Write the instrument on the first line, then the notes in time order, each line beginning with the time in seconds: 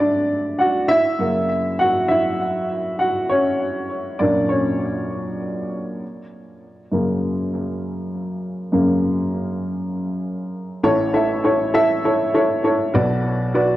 upright piano
Already playing: D3 F#3 A3 E4 A4 E5
0.00 D4 D5
0.59 F#4 F#5
0.88 E4 E5
1.19 F#2 C#3 A#3
1.79 F#4 F#5
2.08 E4 E5
2.99 F#4 F#5
3.29 C#4 C#5
4.19 F#2 A#2 A#3 D4 D5
4.49 C#4 C#5
6.92 F#2 C#3 A#3
8.72 F#2 C#3 A#3
10.83 A1 A2 E4 A4 C#5
11.13 E4 A4 E5
11.44 E4 A4 C#5
11.74 E4 A4 E5
12.04 E4 A4 C#5
12.34 E4 A4 C#5
12.64 E4 A4 C#5
12.94 B1 B2 F#4 B4 D5
13.54 F#4 B4 D5